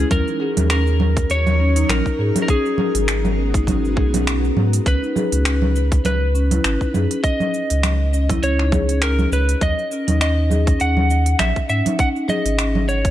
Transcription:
Already playing: ambient pad E3 G#3 C#4 B4, electric slide guitar G#4
0.10 sub bass D#2, ambient pad F#3, marimba C#4, electric slide guitar A#4, kick, open hi-hat, low conga, shaker
0.27 marimba D#4, shaker
0.37 marimba G#4, ambient pad A#4
0.57 sub bass D#2, marimba C#4, open hi-hat, low conga, shaker
0.70 marimba C#4, electric slide guitar A#4, finger snap, open hi-hat, shaker
0.87 ambient pad D#4, shaker
1.00 low conga
1.17 kick, open hi-hat, shaker
1.30 sub bass D#2, electric slide guitar C#5, open hi-hat, shaker
1.47 low conga, shaker
1.60 marimba C#4
1.76 marimba D#4, open hi-hat, shaker
1.89 sub bass A#1, marimba C#4, electric slide guitar A#4, finger snap, open hi-hat, low conga, shaker
2.06 marimba D#4, kick, shaker
2.19 sub bass G#2, marimba G#4
2.35 marimba C#4, open hi-hat, low conga, shaker
2.42 electric slide guitar A#4
2.48 ambient pad G#3, marimba C#4, electric slide guitar G#4, kick, open hi-hat, shaker
2.63 ambient pad F#4, shaker
2.67 ambient pad B3
2.78 low conga
2.95 sub bass G#1, open hi-hat, shaker
3.08 finger snap, open hi-hat, shaker
3.25 low conga, shaker
3.38 marimba C#4
3.54 marimba D#4, kick, open hi-hat, shaker
3.67 marimba C#4, kick, open hi-hat, low conga, shaker
3.83 marimba D#4, shaker
3.96 sub bass B1, marimba G#4, kick
4.14 marimba C#4, open hi-hat, low conga, shaker
4.27 marimba C#4, finger snap, open hi-hat, shaker
4.45 shaker
4.56 sub bass G#2, low conga
4.73 open hi-hat, shaker
4.86 sub bass C#2, marimba C#4, electric slide guitar B4, kick, open hi-hat, shaker
5.03 marimba D#4, shaker
5.16 marimba G#4, low conga, shaker
5.32 sub bass C#2, marimba C#4, open hi-hat, shaker
5.45 marimba C#4, finger snap, open hi-hat, shaker
5.62 low conga
5.76 shaker
5.92 kick, open hi-hat, shaker
6.05 sub bass C#2, electric slide guitar B4, open hi-hat, low conga, shaker
6.35 marimba C#4, shaker
6.51 marimba E4, open hi-hat, low conga, shaker
6.64 sub bass G#1, marimba C#4, finger snap, open hi-hat, shaker
6.81 kick, shaker
6.94 sub bass F#2, marimba G#4, low conga, shaker
7.11 marimba C#4, open hi-hat, shaker
7.24 electric slide guitar D#5, kick, open hi-hat, shaker
7.40 low conga, shaker
7.54 shaker
7.70 sub bass C#2, open hi-hat, shaker
7.83 finger snap, open hi-hat, low conga, shaker
8.13 marimba C#4, shaker
8.29 marimba E4, kick, open hi-hat, low conga, shaker
8.43 sub bass C#2, marimba C#4, electric slide guitar C#5, open hi-hat, shaker
8.59 marimba D#4, finger snap
8.72 marimba G#4, kick, low conga, shaker
8.89 marimba C#4, open hi-hat, shaker
9.02 marimba C#4, electric slide guitar A#4, finger snap, open hi-hat, shaker
9.19 low conga, shaker
9.32 sub bass C#2, electric slide guitar B4, shaker
9.49 open hi-hat, shaker
9.61 sub bass D#2, electric slide guitar D#5, kick, open hi-hat, low conga, shaker
9.79 shaker
9.91 marimba C#4, shaker
10.07 sub bass D#2, marimba D#4, open hi-hat, low conga, shaker
10.20 marimba C#4, electric slide guitar D#5, finger snap, open hi-hat, shaker
10.37 marimba D#4
10.50 marimba G#4, low conga, shaker
10.66 marimba C#4, kick, open hi-hat, shaker
10.79 sub bass D#2, marimba C#4, electric slide guitar F#5, open hi-hat, shaker
10.97 low conga
11.10 shaker
11.26 open hi-hat, shaker
11.39 sub bass A#1, electric slide guitar E5, finger snap, open hi-hat, low conga, shaker
11.56 kick, shaker
11.68 sub bass G#2, marimba C#4, electric slide guitar E5, shaker
11.85 marimba D#4, open hi-hat, low conga, shaker
11.99 marimba C#4, electric slide guitar F#5, kick, open hi-hat, shaker
12.15 marimba D#4, shaker
12.28 marimba G#4, electric slide guitar D#5, low conga, shaker
12.45 sub bass G#1, marimba C#4, open hi-hat, shaker
12.58 marimba C#4, finger snap, open hi-hat, shaker
12.75 low conga
12.89 electric slide guitar C#5, shaker
13.05 kick, open hi-hat, shaker

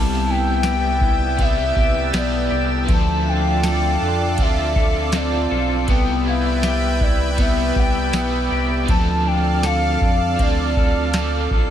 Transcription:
Already playing: analog synth bass C2, overdriven electric guitar C3 G3 B3 E4, clean electric guitar G3 C4, analog synth pad B3 E5 G5, soft synth lead A5
0.25 clean electric guitar E4, synth texture D5
0.30 soft synth lead G5
0.49 synth texture G5
0.63 clean electric guitar G4, snare, ride, tambourine
0.74 synth texture A5
1.01 clean electric guitar E4, kick
1.36 overdriven electric guitar C3 G3 B3, clean electric guitar B3, kick, ride
1.41 overdriven electric guitar E4, soft synth lead E5
1.76 analog synth bass C2, clean electric guitar G4, kick
2.13 analog synth bass B1, overdriven electric guitar G3 B3 E4, clean electric guitar B3, synth texture A4, soft synth lead D5, snare, ride, tambourine
2.36 synth texture D5
2.51 analog synth bass C2, clean electric guitar G4
2.60 synth texture E5
2.85 analog synth bass D2, overdriven electric guitar D3 F3, clean electric guitar F3, analog synth pad F4 A4, kick, ride
2.90 overdriven electric guitar C4 D4 A4, analog synth pad D5, soft synth lead A5
3.26 clean electric guitar D4, soft synth lead G5
3.63 clean electric guitar A4, snare, ride, tambourine
4.01 analog synth bass F2, clean electric guitar D4
4.36 analog synth bass D2, overdriven electric guitar F3 C4 D4, clean electric guitar C4, kick, ride
4.41 overdriven electric guitar A4, soft synth lead E5
4.76 clean electric guitar A4, synth texture A4, kick
5.00 synth texture C4
5.11 overdriven electric guitar F3 C4 D4, clean electric guitar C4, snare, ride, tambourine
5.16 overdriven electric guitar A4, soft synth lead D5
5.51 analog synth bass B1, clean electric guitar A4
5.87 analog synth bass C2, overdriven electric guitar C3 G3 B3 E4 G4, clean electric guitar B3, analog synth pad B4 E5 G5, synth texture D5, soft synth lead G5, kick, ride
6.24 clean electric guitar E4, overdriven electric guitar E4 G4
6.28 overdriven electric guitar B3, soft synth lead F5
6.46 soft synth lead E5
6.63 clean electric guitar G4, snare, ride, tambourine
7.00 clean electric guitar E4, soft synth lead D5, kick
7.36 overdriven electric guitar G3 B3 E4, clean electric guitar B3, synth texture D5, kick, ride
7.41 overdriven electric guitar G4, soft synth lead E5
7.76 analog synth bass C2, clean electric guitar G4, soft synth lead G5, kick
8.12 analog synth bass B1, overdriven electric guitar G3 B3 E4, clean electric guitar B3, snare, ride, tambourine
8.17 overdriven electric guitar G4
8.51 analog synth bass C2, clean electric guitar G4
8.85 analog synth bass D2, overdriven electric guitar D3 F3, clean electric guitar F3, analog synth pad A4 D5 F5, kick, ride
8.90 overdriven electric guitar C4 D4, soft synth lead A5
8.94 overdriven electric guitar A4
9.26 clean electric guitar D4, soft synth lead G5
9.63 clean electric guitar A4, soft synth lead F5, snare, ride, tambourine
10.01 analog synth bass F2, clean electric guitar D4, kick
10.36 analog synth bass D2, overdriven electric guitar F3 C4 D4, clean electric guitar C4, kick, ride
10.42 overdriven electric guitar A4, soft synth lead D5
10.76 clean electric guitar A4, kick
11.12 overdriven electric guitar F3 C4 D4, clean electric guitar C4, synth texture F5, snare, ride, tambourine
11.17 overdriven electric guitar A4
11.37 synth texture A5
11.51 analog synth bass B1, clean electric guitar A4, kick
11.62 synth texture C6

